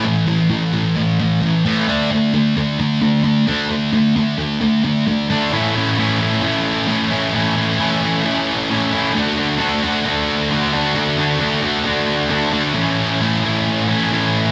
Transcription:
X:1
M:4/4
L:1/8
Q:1/4=132
K:A
V:1 name="Distorted electric guitar"
[A,,E,] [A,,E,] [A,,E,] [A,,E,] [A,,E,] [A,,E,] [A,,E,] [A,,E,A,] | [D,A,D] [D,A,] [D,A,] [D,A,] [D,A,] [D,A,] [D,A,] [D,A,D] | [D,A,] [D,A,] [D,A,] [D,A,] [D,A,] [D,A,] [D,A,] [D,A,D] | [A,,E,A,CE] [A,CE] [E,A,CE] [A,CE] [A,,E,A,CE]2 [E,A,CE] [A,CE] |
[A,,E,A,CE] [A,CE] [E,A,CE] [A,CE] [A,,E,A,CE]2 [E,A,CE] [A,CE] | [D,A,DF] [A,DF] [D,A,DF] [A,DF] [D,A,DF]2 [D,A,DF] [A,DF] | [D,A,DF] [A,DF] [D,A,DF] [A,DF] [D,A,DF]2 [D,A,DF] [A,DF] | [A,,E,A,CE]2 [E,A,CE] [A,CE]2 [A,CE] [A,,E,A,CE]2 |]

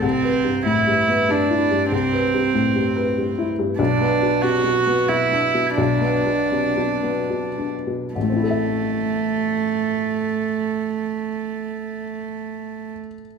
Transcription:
X:1
M:3/4
L:1/8
Q:1/4=86
K:Am
V:1 name="Cello"
C2 E2 D2 | C4- C z | D2 ^F2 E2 | D4- D z |
A,6- | A,6 |]
V:2 name="Upright piano" clef=bass
(3C,, B G,, (3A,, G,, B, (3G,, E G,, | (3C,, B G,, (3A,, G,, B (3G,, E G,, | (3B,,, B, B,, (3C, B,, B, (3B,, D B,, | (3B,,, B, B,, (3C, B,, B, (3B,, D B,, |
[A,,,A,,CEAe]6- | [A,,,A,,CEAe]6 |]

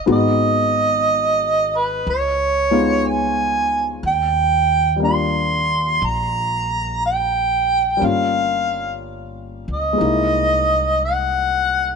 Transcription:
X:1
M:4/4
L:1/8
Q:"Swing" 1/4=60
K:Ebdor
V:1 name="Harmonica"
e3 _c d2 a2 | =g2 c'2 b2 g2 | f2 z e3 g2 |]
V:2 name="Grand piano"
[A,_CEG]4 z [A,CEF]3 | z2 [=G,B,=DF]6 | [=G,B,DF]4 [^G,B,^D=E]4 |]
V:3 name="Upright bass" clef=bass
A,,,4 D,,4 | E,,4 B,,,4 | =G,,,3 D,, C,,4 |]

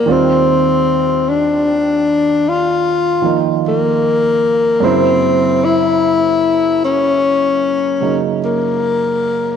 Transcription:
X:1
M:4/4
L:1/8
Q:"Swing" 1/4=50
K:Eb
V:1 name="Tenor saxophone"
C2 D2 F2 B,2 | ^B, =E2 ^C3 ^A,2 |]
V:2 name="Grand piano" clef=bass
[E,,E,G,CF]4- [E,,E,G,CF] [E,F,B,E]3 | [^F,,^C,^A,=E^B]4- [F,,C,A,EB] [C,^F,A,_E]3 |]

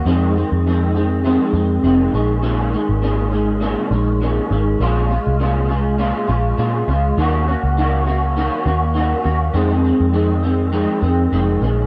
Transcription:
X:1
M:4/4
L:1/16
Q:"Swing 16ths" 1/4=101
K:Bbm
V:1 name="Clean electric guitar" clef=bass
[F,,E,A,C]2 [E,A,C]2 [F,,E,A,C]2 [E,A,C]2 [F,,E,A,C]2 [E,A,C]2 [F,,E,A,C]2 [E,A,D]2 | [B,,E,A,D]2 [E,A,D]2 [B,,E,A,D]2 [E,A,D]2 [B,,E,A,D]2 [E,A,D]2 [B,,E,A,D]2 [E,A,D]2 | [B,,A,DF]2 [A,DF]2 [B,,A,DF]2 [A,DF]2 [B,,A,DF]2 [A,DF]2 [B,,A,DF]2 [A,DF]2 | [E,B,DG]2 [B,DG]2 [E,B,DG]2 [B,DG]2 [E,B,DG]2 [B,DG]2 [E,B,DG]2 [B,DG]2 |
[F,,E,A,C]2 [E,A,C]2 [F,,E,A,C]2 [E,A,C]2 [F,,E,A,C]2 [E,A,C]2 [F,,E,A,C]2 [E,A,D]2 |]
V:2 name="Picked electric bass" clef=bass
F,,3 F,,6 z F,,2 F,,,2 B,,,2- | B,,,3 A,,,6 z B,,,4 A,,,2 | B,,,3 C,,6 z B,,,2 B,,2 D,,2 | E,,3 D,,6 z E,,4 E,,2 |
F,,3 F,,6 z F,,2 F,,,2 B,,,2 |]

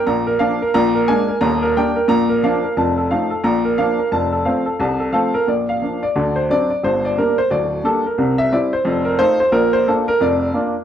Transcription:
X:1
M:4/4
L:1/8
Q:"Swing" 1/4=177
K:Bb
V:1 name="Upright piano"
b B f B b B _a B | b B g B b B f B | a A f A b B f B | a A f A a A [Af] [AB] |
d f2 d2 c d d | c d B c d2 A B- | B =e d c2 B c c | B c A B d2 z2 |]
V:2 name="Upright piano" clef=bass
[B,,,B,,]2 [F,B,D]2 [B,,,B,,]2 [_A,B,D]2 | [E,,,E,,]2 [G,B,D]2 [B,,,B,,]2 [F,B,D]2 | [F,,,F,,]2 [F,A,E]2 [B,,,B,,]2 [F,B,D]2 | [F,,,F,,]2 [F,A,C]2 [C,,C,]2 [F,A,C]2 |
[B,,,B,,]2 [F,B,D]2 [D,,D,]2 [^F,CD]2 | [G,,,G,,]2 [G,B,D]2 [D,,,D,,]2 [G,B,D]2 | [C,,C,]2 [G,C=E]2 [F,,,F,,]2 [A,_EF]2 | [B,,,B,,]2 [B,DF]2 [F,,,F,,]2 [B,DF]2 |]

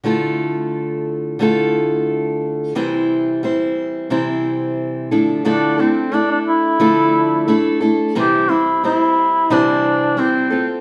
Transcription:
X:1
M:4/4
L:1/16
Q:1/4=89
K:Dm
V:1 name="Duduk"
z16 | z16 | D2 C2 D D E8 z2 | G2 E2 E4 D4 C3 z |]
V:2 name="Steel-string acoustic guitar"
[D,A,EFA]8 [D,A,EFA]8 | [C,E,G,CEc]4 [G,CEc]4 [C,E,G,CEc]6 [D,F,A,DEA]2 | [D,F,A,DEA]2 [A,DEA]2 [A,DEA]4 [D,F,A,DEA]4 [A,DEA]2 [A,DEA]2 | [C,E,G,CEc]2 [G,CEc]2 [G,CEc]4 [C,E,G,CEc]4 [G,CEc]2 [CFA]2 |]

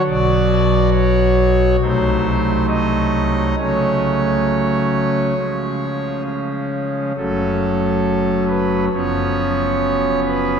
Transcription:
X:1
M:4/4
L:1/8
Q:1/4=68
K:F#m
V:1 name="Pipe organ"
d2 c2 =c2 _e2 | c6 z2 | A3 B c3 B |]
V:2 name="Pipe organ" clef=bass
[B,,,B,,F,F]4 [=C,,=C,_G,A,_E]4 | [C,F,A,C]4 [C,^E,G,C]4 | [F,,,F,,F,A,C]4 [F,,,F,,^E,B,C]4 |]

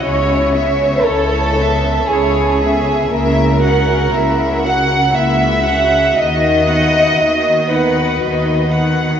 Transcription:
X:1
M:3/4
L:1/8
Q:1/4=59
K:C#m
V:1 name="Violin section"
c e c e c e | e f e f e f | d f d f d f |]
V:2 name="Violin section"
c2 A2 G2 | ^A3 f e2 | d3 B2 z |]
V:3 name="Viola section"
[CE] [B,C] [CE] [B,C] [CE] [B,C] | [^A,E] [CF] [A,E] [CF] [A,E] [CF] | [DF] [B,D] [DF] [B,D] [DF] [B,D] |]
V:4 name="Cello section" clef=bass
C,2 C,2 C,2 | C,2 C,2 C,2 | D,2 D,2 D,2 |]
V:5 name="Double bass section" clef=bass
C,,2 C,,2 C,,2 | C,,2 C,,2 C,,2 | D,,2 D,,2 D,,2 |]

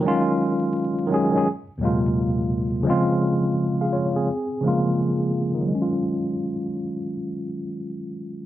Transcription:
X:1
M:4/4
L:1/16
Q:"Swing 16ths" 1/4=85
K:Ebdor
V:1 name="Tine electric piano" clef=bass
[E,G,A,DF]4 z2 [E,G,A,DA] [E,G,A,DA] z2 [E,,B,,C,G,A,B,F]4 z2 | [D,F,A,CF]4 z [Af] [Fd] [CA]2 z [D,F,A,B,F]4 z2 | [E,G,A,DF]16 |]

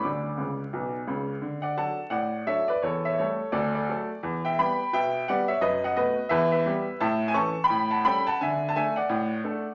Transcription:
X:1
M:4/4
L:1/16
Q:"Swing" 1/4=172
K:D
V:1 name="Upright piano"
[dd']12- [dd']2 z2 | z2 [df]2 [fa]4 [df]4 [ce]2 [Bd]2 | [Ac]2 [ce]2 [Ac]4 [Ad]2 [Ad]6 | z2 [eg]2 [gb]4 [eg]4 [df]2 [ce]2 |
[B^d]2 [df]2 [Bd]4 [Be]2 [Be]6 | [K:A] [ea]3 g [ac']3 [=gb]3 [fa]2 [gb]2 [fa]2 | [eg]3 a [eg]2 [df]8- [df]2 |]
V:2 name="Upright piano" clef=bass
[D,,D,]4 [C,,C,]4 [B,,,B,,]4 [C,,C,]4 | D,4 [F,DA]4 A,,4 [F,DA]4 | E,,4 [G,A,]4 D,,4 [F,A,A]4 | E,,4 [G,B,G]4 B,,4 [G,B,G]4 |
F,,4 [A,B,F]4 E,,4 [G,B,G]4 | [K:A] A,,4 [E,CA]4 A,,4 [=G,CA]4 | D,4 [A,DA]4 A,,4 [A,DA]4 |]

